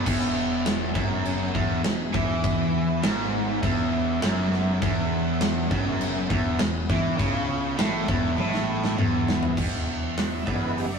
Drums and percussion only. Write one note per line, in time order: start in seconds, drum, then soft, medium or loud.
0.06 kick loud
0.06 crash loud
0.06 crash medium
0.66 snare loud
0.66 crash medium
0.95 kick loud
1.25 crash medium
1.55 kick loud
1.84 snare loud
1.84 crash medium
2.14 kick loud
2.44 kick loud
2.44 crash medium
3.04 snare loud
3.04 crash medium
3.63 kick loud
3.63 crash medium
4.22 snare loud
4.22 crash medium
4.52 snare soft
4.82 kick loud
4.82 crash medium
5.41 snare loud
5.41 crash medium
5.71 kick loud
6.01 crash medium
6.30 kick loud
6.59 snare loud
6.59 crash medium
6.89 kick loud
6.89 snare soft
7.19 kick loud
7.19 crash medium
7.79 snare loud
7.79 crash medium
8.08 kick loud
8.38 high tom medium
8.54 snare medium
8.84 snare medium
8.98 mid tom medium
9.28 snare loud
9.43 floor tom medium
9.57 kick loud
9.57 crash loud
10.18 snare loud
10.18 open hi-hat medium
10.47 kick loud
10.78 open hi-hat medium